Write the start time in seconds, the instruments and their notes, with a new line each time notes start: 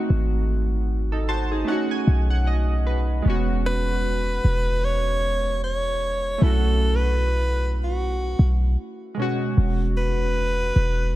Already playing: synth keys A3 C4 D#4 F#4
0.10 808-style bass G#1
1.12 synth keys D#4 A4
1.29 synth keys F#4 C5 A5
1.52 synth keys D#4 G#4
1.65 synth keys A3 C#4 F#5
1.70 synth keys D#4 F#4
1.91 synth keys G#5
2.07 808-style bass B1
2.30 synth keys F#5
2.47 synth keys D#5
2.87 synth keys B4
3.22 808-style bass E1, synth keys G#3 B3
3.27 synth keys C#4 F#4
3.66 alto saxophone B4
4.44 808-style bass E1
4.85 alto saxophone C#5
5.64 alto saxophone C#5
6.38 808-style bass B1, synth keys A3 C#4
6.43 synth keys E4 F#4, alto saxophone A4
6.96 alto saxophone B4
7.84 alto saxophone F#4
8.39 808-style bass B1
9.14 synth keys B2 G#3
9.19 synth keys C#4 F#4
9.57 808-style bass E1
9.97 alto saxophone B4
10.76 808-style bass E1